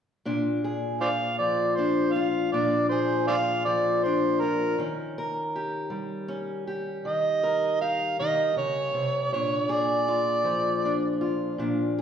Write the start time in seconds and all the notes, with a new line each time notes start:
0.25 A#2 D4
0.64 G#4
1.01 F4 C5 D5 F5
1.38 F3 D5
1.75 D4 C5
2.13 F4 F5
2.52 A#2 D4 D5
2.89 G#4 C5
3.27 F4 C5 D5 F5
3.65 F3 D5
4.03 D4 C5
4.41 F4 A#4
4.78 D#3 C#4
5.18 A#4
5.55 G4
5.90 G3
6.28 C#4
6.67 G4
7.05 D#3 D#5
7.43 A#4
7.81 G4 F5
8.19 D#3 D#5
8.56 C#3 C#5
8.94 C3
9.32 A#2 D4 C#5
9.69 G#4 D5
10.08 F4
10.44 F3
10.85 D4
11.21 F4
11.58 A#2 D4
11.98 G#4